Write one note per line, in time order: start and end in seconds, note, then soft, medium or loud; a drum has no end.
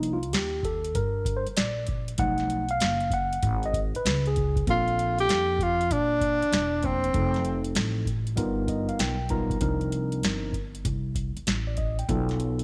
0.00 0.33 C2 loud
0.00 0.17 F3 medium
0.00 0.17 A#3 medium
0.00 0.17 D4 medium
0.00 0.17 D#4 medium
0.00 closed hi-hat medium
0.13 0.32 F4 medium
0.23 closed hi-hat medium
0.33 0.92 D#2 loud
0.33 0.65 G4 medium
0.33 snare loud
0.33 closed hi-hat medium
0.63 0.97 A4 medium
0.63 kick medium
0.63 closed hi-hat medium
0.84 closed hi-hat medium
0.95 1.44 G2 medium
0.95 1.38 A#4 medium
0.95 kick medium
0.95 closed hi-hat loud
1.25 kick loud
1.25 closed hi-hat medium
1.37 1.46 C5 medium
1.47 muted upright bass stroke soft
1.47 closed hi-hat medium
1.57 2.16 A#1 medium
1.57 1.86 D5 medium
1.57 snare loud
1.57 closed hi-hat loud
1.87 kick medium
1.87 closed hi-hat medium
2.08 closed hi-hat medium
2.18 2.78 B1 loud
2.18 2.64 F3 medium
2.18 2.64 A3 medium
2.18 2.64 D#4 medium
2.18 2.72 F#5 loud
2.18 kick loud
2.18 closed hi-hat loud
2.38 snare soft
2.38 closed hi-hat soft
2.50 closed hi-hat medium
2.69 3.13 F5 loud
2.69 closed hi-hat medium
2.80 3.40 F#1 medium
2.80 snare loud
2.80 closed hi-hat medium
3.00 closed hi-hat soft
3.10 3.66 F#5 medium
3.10 kick medium
3.10 closed hi-hat medium
3.33 closed hi-hat medium
3.43 3.92 G#1 loud
3.43 kick medium
3.43 closed hi-hat loud
3.63 3.79 D#5 medium
3.63 closed hi-hat soft
3.73 kick medium
3.73 closed hi-hat medium
3.94 4.27 B4 medium
3.94 muted upright bass stroke soft
3.94 closed hi-hat medium
4.05 4.64 C#2 loud
4.05 snare loud
4.05 closed hi-hat loud
4.26 4.65 G#4 medium
4.26 closed hi-hat soft
4.36 kick medium
4.36 closed hi-hat medium
4.56 kick loud
4.56 closed hi-hat medium
4.67 5.26 A#1 loud
4.67 5.60 F3 medium
4.67 5.60 A#3 medium
4.67 5.61 C4 medium
4.67 5.61 D4 medium
4.67 5.16 F4 loud
4.67 5.61 A4 medium
4.67 kick loud
4.67 closed hi-hat medium
4.88 closed hi-hat soft
4.99 closed hi-hat medium
5.19 5.64 G4 loud
5.19 closed hi-hat medium
5.29 5.87 F2 loud
5.29 snare loud
5.29 closed hi-hat medium
5.59 5.94 F4 loud
5.59 kick medium
5.59 closed hi-hat medium
5.81 closed hi-hat medium
5.91 6.39 A#2 medium
5.91 6.87 D4 loud
5.91 kick medium
5.91 closed hi-hat medium
6.21 kick medium
6.21 closed hi-hat medium
6.42 muted upright bass stroke soft
6.42 closed hi-hat medium
6.52 7.11 E1 medium
6.52 snare loud
6.52 closed hi-hat loud
6.82 7.08 F3 medium
6.82 7.08 A#3 medium
6.82 7.09 C4 medium
6.82 7.77 C4 medium
6.82 7.09 D4 medium
6.82 7.09 C5 medium
6.82 kick medium
6.82 closed hi-hat medium
7.04 closed hi-hat medium
7.13 7.73 F1 loud
7.13 8.07 F3 medium
7.13 8.07 A3 medium
7.13 8.07 C4 medium
7.13 8.08 D#4 medium
7.13 8.08 A4 medium
7.13 kick loud
7.13 closed hi-hat medium
7.34 snare soft
7.34 closed hi-hat soft
7.45 closed hi-hat medium
7.64 closed hi-hat medium
7.75 8.35 A1 medium
7.75 snare loud
7.75 closed hi-hat medium
8.05 kick medium
8.05 closed hi-hat medium
8.27 closed hi-hat soft
8.36 8.86 G1 loud
8.36 9.15 G3 loud
8.36 9.15 B3 medium
8.36 9.16 D#4 medium
8.36 9.16 F4 medium
8.36 9.16 A#4 loud
8.36 kick medium
8.36 closed hi-hat medium
8.68 8.88 D#5 medium
8.68 kick medium
8.68 closed hi-hat medium
8.89 8.99 F5 medium
8.89 muted upright bass stroke soft
8.89 closed hi-hat soft
8.99 9.58 B1 medium
8.99 9.28 G5 medium
8.99 snare loud
8.99 closed hi-hat loud
9.29 9.56 G3 medium
9.29 9.56 B3 medium
9.29 9.56 D#4 medium
9.29 9.56 F4 medium
9.29 9.57 A#4 loud
9.29 9.59 A#5 medium
9.29 kick medium
9.29 closed hi-hat medium
9.50 kick medium
9.50 closed hi-hat medium
9.60 10.20 C2 loud
9.60 10.54 F3 medium
9.60 10.54 C4 medium
9.60 10.55 D4 medium
9.60 10.55 D#4 medium
9.60 10.55 A#4 loud
9.60 kick loud
9.60 closed hi-hat medium
9.81 closed hi-hat soft
9.92 closed hi-hat medium
10.12 closed hi-hat medium
10.23 10.82 G1 medium
10.23 snare loud
10.23 closed hi-hat medium
10.53 kick medium
10.53 closed hi-hat medium
10.75 closed hi-hat medium
10.85 11.34 C2 loud
10.85 kick medium
10.85 closed hi-hat loud
11.15 kick medium
11.15 closed hi-hat medium
11.37 muted upright bass stroke soft
11.37 closed hi-hat soft
11.47 12.06 A1 medium
11.47 snare loud
11.47 closed hi-hat loud
11.67 11.77 D5 medium
11.77 11.97 D#5 medium
11.77 kick medium
11.77 closed hi-hat medium
11.99 12.28 G5 medium
11.99 closed hi-hat medium
12.09 12.64 B1 loud
12.09 12.64 F#3 medium
12.09 12.64 B3 medium
12.09 12.64 D#4 medium
12.09 12.64 F4 medium
12.09 12.64 A4 loud
12.09 kick loud
12.09 closed hi-hat medium
12.29 snare soft
12.29 closed hi-hat soft
12.40 closed hi-hat medium
12.59 closed hi-hat medium